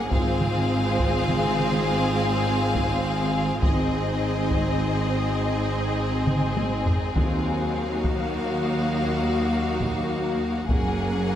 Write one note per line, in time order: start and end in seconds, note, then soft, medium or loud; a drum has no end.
0.00 0.12 C#4 medium
0.00 0.12 F#5 medium
0.10 3.59 G#1 medium
0.10 3.60 G#2 medium
0.10 3.63 C4 medium
0.10 3.59 C4 medium
0.10 3.63 F4 medium
0.10 3.58 G#4 medium
0.10 3.59 G#4 medium
0.10 3.62 C5 medium
0.10 3.63 F5 medium
0.10 3.59 F5 medium
0.10 taiko medium
0.41 taiko mid soft
0.99 taiko medium
1.29 taiko mid medium
1.59 taiko mid soft
2.75 taiko medium
3.61 6.91 G#1 medium
3.61 6.92 G#2 medium
3.61 7.99 C4 medium
3.61 6.82 C4 soft
3.61 7.15 D#4 medium
3.61 6.82 D#4 medium
3.61 7.99 G#4 medium
3.61 7.11 G#4 medium
3.61 7.11 C5 medium
3.61 7.16 D#5 medium
3.61 6.92 D#5 medium
3.61 taiko medium
4.51 taiko medium
6.27 taiko mid medium
6.57 taiko high medium
6.86 taiko low medium
7.15 10.64 D#2 soft
7.15 10.64 D#2 medium
7.15 8.00 D#3 medium
7.15 10.65 F#3 soft
7.15 10.64 D#4 medium
7.15 10.67 F#4 medium
7.15 10.65 F#4 medium
7.15 10.68 A#4 medium
7.15 10.64 F5 medium
7.15 10.68 F5 medium
7.15 taiko medium
8.03 10.68 A#3 soft
8.03 10.68 F#4 medium
8.03 taiko medium
9.81 taiko medium
10.68 11.35 F#1 medium
10.68 11.35 F#2 medium
10.68 11.35 A#3 medium
10.68 11.35 C#4 medium
10.68 11.35 F#4 medium
10.68 11.35 G#4 medium
10.68 11.35 A#4 medium
10.68 11.35 F#5 medium
10.68 11.35 G#5 medium
10.68 taiko medium